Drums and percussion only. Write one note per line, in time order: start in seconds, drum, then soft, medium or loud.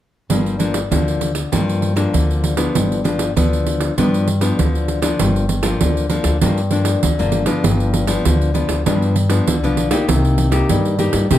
0.30 pandeiro medium
0.46 pandeiro soft
0.60 pandeiro soft
0.74 pandeiro medium
0.92 pandeiro medium
1.08 pandeiro soft
1.21 pandeiro soft
1.35 pandeiro medium
1.53 pandeiro medium
1.69 pandeiro soft
1.82 pandeiro soft
1.97 pandeiro medium
2.14 pandeiro medium
2.31 pandeiro soft
2.44 pandeiro soft
2.57 pandeiro medium
2.75 pandeiro medium
2.92 pandeiro soft
3.05 pandeiro medium
3.19 pandeiro medium
3.37 pandeiro medium
3.53 pandeiro soft
3.66 pandeiro soft
3.81 pandeiro medium
3.98 pandeiro medium
4.14 pandeiro soft
4.28 pandeiro soft
4.41 pandeiro medium
4.59 pandeiro medium
4.75 pandeiro soft
4.88 pandeiro soft
5.02 pandeiro medium
5.19 pandeiro medium
5.36 pandeiro soft
5.49 pandeiro medium
5.63 pandeiro medium
5.81 pandeiro medium
5.97 pandeiro soft
6.10 pandeiro medium
6.24 pandeiro medium
6.41 pandeiro medium
6.58 pandeiro soft
6.71 pandeiro soft
6.85 pandeiro medium
7.03 pandeiro medium
7.19 pandeiro soft
7.32 pandeiro soft
7.46 pandeiro medium
7.64 pandeiro medium
7.80 pandeiro soft
7.94 pandeiro medium
8.07 pandeiro medium
8.25 pandeiro medium
8.42 pandeiro soft
8.55 pandeiro soft
8.69 pandeiro medium
8.86 pandeiro medium
9.02 pandeiro soft
9.16 pandeiro soft
9.30 pandeiro medium
9.48 pandeiro medium
9.64 pandeiro soft
9.77 pandeiro soft
9.91 pandeiro medium
10.09 pandeiro medium
10.25 pandeiro soft
10.38 pandeiro medium
10.52 pandeiro medium
10.69 pandeiro medium
10.85 pandeiro soft
10.99 pandeiro soft
11.13 pandeiro medium
11.31 pandeiro medium